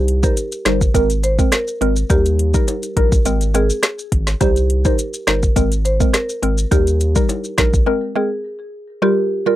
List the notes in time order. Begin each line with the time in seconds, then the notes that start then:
Already playing: C2 G3 D#4 C5
0.08 closed hi-hat
0.23 G3 D#4 A#4 C5, kick, maracas
0.37 closed hi-hat, maracas
0.52 closed hi-hat, maracas
0.65 G1 G3 D#4 A#4 C5, cross-stick, snare, closed hi-hat
0.81 kick, maracas
0.94 G#1 G#3 C4 A#4, kick, closed hi-hat, maracas
1.10 closed hi-hat, maracas
1.23 C5, closed hi-hat, maracas
1.39 G#3 C4 A#4, kick, maracas
1.52 A#4, cross-stick, snare, closed hi-hat, maracas
1.68 maracas
1.81 G#1 G#3 C4 A#4, closed hi-hat
1.96 maracas
2.10 D#2 G3 D#4 G4 A#4, kick, closed hi-hat, maracas
2.26 closed hi-hat, maracas
2.39 closed hi-hat
2.54 G3 D#4 A#4, kick, maracas
2.68 closed hi-hat, high timbale, maracas
2.83 closed hi-hat, maracas
2.97 A#1 G3 D#4 A#4, kick, closed hi-hat
3.12 kick, maracas
3.25 G#1 G#3 C4 A#4, closed hi-hat, maracas
3.41 closed hi-hat, maracas
3.54 G#3 C4 G#4 A#4, closed hi-hat, maracas
3.70 maracas
3.83 cross-stick, snare, closed hi-hat, maracas
3.99 maracas
4.12 G#1, kick, closed hi-hat
4.27 snare, maracas
4.41 C2 G3 D#4 G4 C5, kick, closed hi-hat, maracas
4.56 closed hi-hat, maracas
4.70 closed hi-hat
4.85 G3 D#4 A#4 C5, kick, maracas
4.99 closed hi-hat, maracas
5.14 closed hi-hat, maracas
5.27 G1 G3 D#4 A#4 C5, cross-stick, snare, closed hi-hat
5.43 kick, maracas
5.56 G#1 G#3 C4 A#4, kick, closed hi-hat, maracas
5.72 closed hi-hat, maracas
5.85 C5, closed hi-hat, maracas
6.00 G#3 C4 A#4, kick, maracas
6.14 A#4, cross-stick, snare, closed hi-hat, maracas
6.29 maracas
6.42 G#1 G#3 C4 A#4, closed hi-hat
6.58 maracas
6.71 D#2 G3 D#4 G4 A#4, kick, closed hi-hat, maracas
6.87 closed hi-hat, maracas
7.00 closed hi-hat, maracas
7.16 G3 D#4 A#4, kick, maracas
7.29 closed hi-hat, high timbale, maracas
7.44 maracas
7.58 A#1 G3 D#4 A#4, kick, cross-stick, snare, closed hi-hat, maracas
7.74 kick, maracas
7.86 G#3 C4 A#4
8.16 G#3 C4 G#4 A#4
9.02 G3 F4 G4 A#4
9.46 G3 F4 A#4